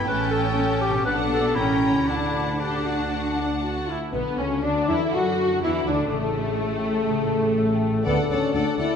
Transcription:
Already playing: A2 C#4
0.00 G4 A4
0.07 A1 A3 C#4 B4 G5 A5
0.31 A4
0.58 C#4
0.81 G4
0.89 B2
0.93 D4
0.98 F#4
1.02 A4 B4
1.06 B1 B3 D4 F#5 A5
1.31 A4
1.39 A2
1.43 C#4
1.48 G4
1.52 E4 A#4
1.56 A1 C#4 G5 A#5
1.90 D3
1.95 D4
1.99 F#4
2.04 D2 A4
2.08 D4 E4 F#5 A5
2.60 D4 G4 F#5 A5
2.87 F#4
3.38 D4
3.63 F#4
3.90 E4
4.13 B1 B2 D3 B3
4.31 D4
4.38 C#2 C#3 C#4
4.48 F#4
4.62 D2 D3 D4 D5
4.81 F#5
4.88 E2 E3 E4
4.98 A4
5.12 F#2 F#3 A3 F#4
5.31 D4
5.62 E2 E3 E4 D5
5.80 F#5
5.86 D2 D3 D4
5.96 A4
6.11 A1 A2 C#3 A3
6.28 E4
6.44 G4
6.61 E5
6.77 G5
6.94 A4
7.10 C#3
7.26 E4
7.41 G4
7.58 E5
7.74 G5
7.90 A4
8.06 D2 D3 B3 A4 D5 F#5
8.23 D4
8.30 D2 C#4 A4 D5 F#5
8.39 F#4
8.53 D2 D4 A4 D5 F#5
8.70 F#5
8.78 D2 E4 A4 D5 F#5
8.86 A4

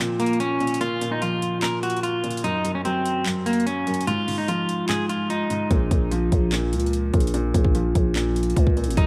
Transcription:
Already playing: F3
0.00 A#2
0.20 A#3, closed hi-hat
0.26 closed hi-hat
0.33 closed hi-hat
0.40 C#4, closed hi-hat
0.60 A#2, closed hi-hat
0.67 closed hi-hat
0.74 closed hi-hat
0.81 A#2 F4, closed hi-hat
1.01 A#2, closed hi-hat
1.12 D#4
1.22 F3 F4, closed hi-hat
1.42 closed hi-hat
1.62 A#2 A#4, clap, closed hi-hat
1.83 F#4, closed hi-hat
1.90 closed hi-hat
1.97 closed hi-hat
2.03 F4, closed hi-hat
2.24 A#2, closed hi-hat
2.31 closed hi-hat
2.37 closed hi-hat
2.44 F#2 D#4, closed hi-hat
2.65 F#2, closed hi-hat
2.75 C#4
2.85 F#3 C4, closed hi-hat
3.05 closed hi-hat
3.26 F#2, clap, closed hi-hat
3.46 A#3, closed hi-hat
3.53 closed hi-hat
3.60 closed hi-hat
3.66 C#4, closed hi-hat
3.87 F#2, closed hi-hat
3.94 closed hi-hat
4.01 closed hi-hat
4.07 G#2 F4, closed hi-hat
4.28 G#2, open hi-hat
4.38 D#4
4.48 F3 F4, closed hi-hat
4.69 closed hi-hat
4.89 G#2 G#4, clap, closed hi-hat
5.09 F4, closed hi-hat
5.30 D#4, closed hi-hat
5.50 G#2, closed hi-hat
5.71 A#1 A#2, kick, closed hi-hat
5.91 A#1 A#2, kick, closed hi-hat
6.11 F3, closed hi-hat
6.32 A#1, kick, closed hi-hat
6.52 A#2, clap, closed hi-hat
6.73 C#2, closed hi-hat
6.80 closed hi-hat
6.86 closed hi-hat
6.93 closed hi-hat
7.14 A#1 A#2, kick, closed hi-hat
7.20 closed hi-hat
7.27 closed hi-hat
7.34 A#2, closed hi-hat
7.54 A#1 A#2, kick, closed hi-hat
7.65 kick
7.75 F3, closed hi-hat
7.95 A#1, kick, closed hi-hat
8.15 A#2, clap, closed hi-hat
8.36 closed hi-hat
8.43 closed hi-hat
8.50 closed hi-hat
8.56 C#2, kick, closed hi-hat
8.67 kick
8.77 A#2, closed hi-hat
8.84 G#1, closed hi-hat
8.90 closed hi-hat
8.97 F#1 F#2 D#4, kick, closed hi-hat

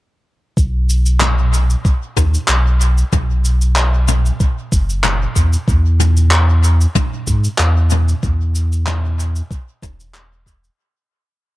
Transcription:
0.57 B1, kick, cabasa
0.90 cabasa
1.06 cabasa
1.21 clap, mid tom, cabasa
1.54 cabasa
1.70 cabasa
1.85 kick, cabasa
2.17 D#2, kick, mid tom, cabasa
2.34 cabasa
2.48 B1, clap, cabasa
2.81 cabasa
2.98 cabasa
3.12 B1, kick, mid tom, cabasa
3.45 cabasa
3.61 cabasa
3.76 clap, cabasa
4.08 mid tom, cabasa
4.26 cabasa
4.40 kick, cabasa
4.72 F#1, kick, cabasa
4.90 cabasa
5.04 clap, mid tom, cabasa
5.36 E2, kick, cabasa
5.53 cabasa
5.68 E2, kick, cabasa
6.00 mid tom, cabasa
6.17 cabasa
6.31 clap, cabasa
6.64 cabasa
6.81 cabasa
6.95 kick, mid tom, cabasa
7.27 G#2, kick, cabasa
7.44 cabasa
7.59 E2, clap, cabasa
7.90 mid tom, cabasa
8.08 cabasa
8.23 E2, kick, cabasa
8.55 cabasa
8.72 cabasa
8.87 clap, mid tom, cabasa
9.20 cabasa
9.36 cabasa
9.51 kick, cabasa
9.82 E1, kick, mid tom, cabasa
10.00 cabasa
10.15 clap, cabasa
10.46 kick, cabasa
10.64 cabasa

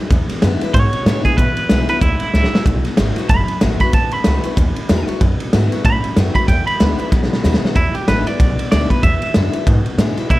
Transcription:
Already playing: F#2
0.10 E2, kick, ride
0.29 muted upright bass stroke, snare, ride
0.42 F#2 D3 G#3 B3 E4, snare, ride
0.61 B3 E4, muted upright bass stroke, ride
0.74 G#2 B2 C#5, kick, ride
0.93 muted upright bass stroke, ride
1.06 A2 D3 G#3 B3 E4, snare, ride
1.25 B3 E4 G#4, muted upright bass stroke, kick, snare, ride
1.37 E2 B2 B4, kick, snare, ride
1.57 muted upright bass stroke, ride
1.69 B1 D3 G#3 B3 E4, snare, ride
1.89 B3 E4 B4, muted upright bass stroke, ride
2.01 D2 G#2 E4, kick, ride
2.20 muted upright bass stroke, ride
2.34 C#2 A2, snare
2.44 snare
2.55 snare
2.66 B1 B2, kick, ride
2.84 muted upright bass stroke, snare, ride
2.97 G#1 D#3 A3 B3 F#4, snare, ride
3.16 B3 F#4, muted upright bass stroke, snare, ride
3.29 F#1 F#2 B5, kick, ride
3.48 ride
3.61 A1 D#3 A3 B3 F#4, snare, ride
3.80 B3 F#4 B5, muted upright bass stroke, kick, ride
3.93 B1 B2 A5, kick, ride
4.11 B5, muted upright bass stroke, ride
4.24 C#2 D#3 A3 B3 F#4, snare, ride
4.43 B3 F#4, ride
4.57 D#2 F#2, kick, ride
4.76 muted upright bass stroke, ride
4.89 E2 D#3 A3 B3 F#4, snare, ride
5.08 B3 F#4, muted upright bass stroke, ride
5.21 F#2 B2, kick, ride
5.40 ride
5.53 G#2 D#3 A3 B3 F#4, snare, ride
5.72 B3 F#4, muted upright bass stroke, snare, ride
5.85 F#2 A2 B5, kick, ride
6.04 muted upright bass stroke, ride
6.16 F#2 D#3 A3 B3 F#4, snare, ride
6.35 B3 F#4 B5, kick, ride
6.48 E2 G5, kick, ride
6.67 B5, muted upright bass stroke, ride
6.80 D2 D3 G#3 B3 E4, snare, ride
6.99 B3 E4, muted upright bass stroke, ride
7.12 B1 B2, kick, snare
7.23 snare
7.33 snare
7.44 D#2 D#3 A3 B3 F#4, snare
7.54 snare
7.63 muted upright bass stroke, snare
7.76 E2 E4, kick, ride
7.95 G4, muted upright bass stroke, ride
8.08 A1 D3 G#3 B3 E4 B4, snare, ride
8.26 B3 E4 D5, muted upright bass stroke, ride
8.40 B1 B2, kick, ride
8.59 muted upright bass stroke, ride
8.72 D2 D3 G#3 B3 E4 D5, snare, ride
8.90 B3 E4 B4, kick, ride
9.03 E2 E5, kick, ride
9.22 muted upright bass stroke, ride
9.34 F#2 D3 G#3 B3 E4, snare, ride
9.53 B3 E4, muted upright bass stroke, ride
9.67 G#2 B2, kick, ride
9.86 muted upright bass stroke, ride
9.98 A2 D3 G#3 B3 E4, snare, ride
10.17 B3 E4, muted upright bass stroke, snare, ride
10.30 E2 B2 E4, kick, ride

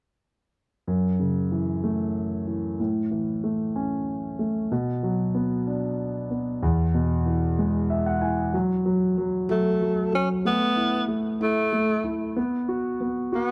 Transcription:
0.88 F#2
1.20 C#3
1.52 E3
1.84 A3
2.47 E3
2.80 A2
3.11 E3
3.44 A3
3.76 C#4
4.39 A3
4.72 B2
5.03 F#3
5.35 B3
5.67 D4
6.31 B3
6.63 E2
6.94 B2
7.26 E3
7.59 G#3
7.90 E5
8.06 F#5
8.22 E3 G#5
8.54 F#3
8.86 F#3
9.18 F#3
9.49 F#3 A3
9.82 F#3
10.13 F#3 C#4
10.45 A3 B3
10.76 E4
11.08 A3
11.41 A3 E4
11.73 A3
12.04 E4
12.36 B3
12.68 F#4
13.01 B3
13.32 B3 F#4

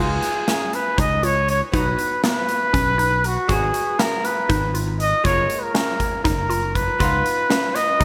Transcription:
Already playing: C#2 B3 D#4 F4
0.00 F4 G#4
0.23 snare, closed hi-hat
0.48 C#4, snare, closed hi-hat
0.73 B4, closed hi-hat
0.98 C#2 D#4 D#5, kick, closed hi-hat
1.23 F4 C#5, closed hi-hat
1.48 C#5, closed hi-hat
1.72 B1 B3 D#4 F#4 B4, kick, closed hi-hat
1.99 closed hi-hat
2.24 B3 B4, snare, closed hi-hat
2.49 closed hi-hat
2.73 B1 C#4, kick, closed hi-hat
2.98 D#4, closed hi-hat
3.24 F#4, closed hi-hat
3.48 G#1 G#3 B3 F#4 G#4, kick, closed hi-hat
3.74 closed hi-hat
3.99 C#4 A#4, snare, closed hi-hat
4.25 B4, closed hi-hat
4.49 G#1 D#4, kick, closed hi-hat
4.74 F4, closed hi-hat
5.00 D#5, closed hi-hat
5.24 F#1 G#3 A#3 F4 C#5, kick, closed hi-hat
5.50 closed hi-hat
5.59 A#4 B4
5.74 C#4 A#4, snare, closed hi-hat
6.00 kick, closed hi-hat
6.24 F#1 D#4 A#4, kick, snare, closed hi-hat
6.50 F4, closed hi-hat
6.75 B4, kick, closed hi-hat
6.99 C#2 B3 D#4 F4, kick, closed hi-hat
7.26 closed hi-hat
7.50 C#4, snare, closed hi-hat
7.75 D#5, snare, closed hi-hat
8.00 C#2 D#4, kick, closed hi-hat

